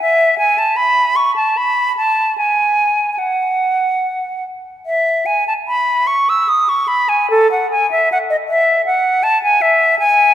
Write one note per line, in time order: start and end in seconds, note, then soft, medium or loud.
0.02 0.38 E5 medium
0.38 0.60 G#5 medium
0.58 0.78 A5 medium
0.76 1.18 B5 medium
1.16 1.35 C#6 medium
1.36 1.59 A5 medium
1.57 1.96 B5 medium
1.97 2.37 A5 medium
2.38 3.11 G#5 medium
3.13 3.20 G#5 soft
3.19 4.44 F#5 medium
4.86 5.27 E5 medium
5.26 5.47 G#5 medium
5.48 5.54 A5 medium
5.68 6.09 B5 medium
6.07 6.31 C#6 medium
6.29 6.50 E6 medium
6.49 6.71 D#6 medium
6.69 6.89 C#6 medium
6.88 7.10 B5 medium
7.09 7.29 G#5 medium
7.30 7.50 A4 medium
7.52 7.71 F#5 medium
7.71 7.90 G#5 medium
7.91 8.09 E5 medium
8.12 8.18 F#5 medium
8.30 8.36 D#5 medium
8.49 8.85 E5 medium
8.86 9.25 F#5 medium
9.23 9.42 A5 medium
9.43 9.63 G#5 medium
9.62 9.99 E5 medium
9.99 10.34 G#5 medium